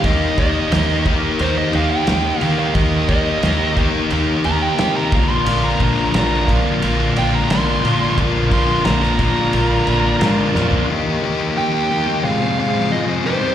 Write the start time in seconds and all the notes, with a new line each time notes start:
0.04 D#2 D#3 A#3 D#4 G4 D#5, kick, ride
0.38 D#2 D#3 A#3 D#4 G4 D#5, kick, ride
0.72 D#2 D#3 A#3 D#4 G4, snare, ride
1.06 D#3 A#3 D#4 G4, kick, ride
1.39 D#2 D#3 A#3 D#4 G4 C5, ride
1.58 D#5
1.73 D#2 D#3 A#3 D#4 G4 F5, ride
1.91 G5
2.07 D#2 D#3 A#3 D#4 G4, snare, ride
2.39 D#3 A#3 D#4 G4 F5, ride
2.59 F5
2.74 D#2 D#3 A#3 D#4 G4 D#5, kick, ride
3.09 D#3 A#3 D#4 G4 D#5, kick, ride
3.43 D#2 D#3 A#3 D#4 G4, snare, ride
3.77 D#3 A#3 D#4 G4, kick, ride
4.10 D#2 D#3 A#3 D#4 G4, ride
4.44 D#2 D#3 A#3 D#4 G4 A#5, ride
4.62 G5
4.78 C3 D#3 A#3 D#4 G4, snare, ride
4.97 A#5
5.12 A#1 A#2 D3 F3 A#3 D4 F4 D5, kick, ride
5.30 C6
5.46 A#1 A#2 D3 F3 A#3 D4 F4, ride
5.64 A#5
5.80 A#1 A#2 D3 F3 A#3 D4 F4, kick, ride
6.14 A#1 A#2 D3 F3 A#3 D4 F4 A#5, snare, ride
6.48 A#2 D3 F3 A#3 D4 F4, kick, ride
6.82 A#1 A#2 D3 F3 A#3 D4 F4, ride
7.16 A#1 A#2 D3 F3 A#3 D4 F4 G5, ride
7.35 A#5
7.50 A#1 A#2 D3 F3 A#3 D4 F4 C6, snare, ride
7.84 A#2 D3 F3 A#3 D4 F4 A#4 D5, ride
8.18 A#1 A#2 D3 F3 A#3 D4 F4, kick, ride
8.51 A#2 D3 F3 A#3 D4 F4 C6, kick, ride
8.85 A#1 A#2 D3 F3 A#3 D4 F4 A#5, snare, ride
9.03 snare
9.18 A#2 D3 F3 A#3 D4 F4 A#5, kick, ride
9.53 A#1 A#2 D3 F3 A#3 D4 F4, ride
9.87 A#1 A#2 D3 F3 A#3 D4 F4, ride
10.21 G#2 A#2 D3 F3 A#3 D4 F4, snare, ride
10.55 F2 A#2 D3 F3 A#3 D4 F4, snare
10.71 floor tom
10.89 D#3 A#3 D#4 G4 D#5
11.22 D#3 A#3 D#4 G4
11.56 D#3 A#3 D#4 G4 G5
11.73 A#3 D#4 G4
11.90 D#3 A#3 D#4 G4
12.07 A#3 D#4 G4
12.24 F2 C3 F3 G#3 C4 F4 G#4 F5
12.41 F3 G#3 C4 G#4
12.57 F3 G#3 C4 G#4 F5
12.90 F2 C3 F3 G#3 C4 G#4 D#5
13.07 F3 G#3 C4 G#4
13.24 C3 D#3 G3 C4 D#4 G4 C5 D5
13.42 G3 C4 G4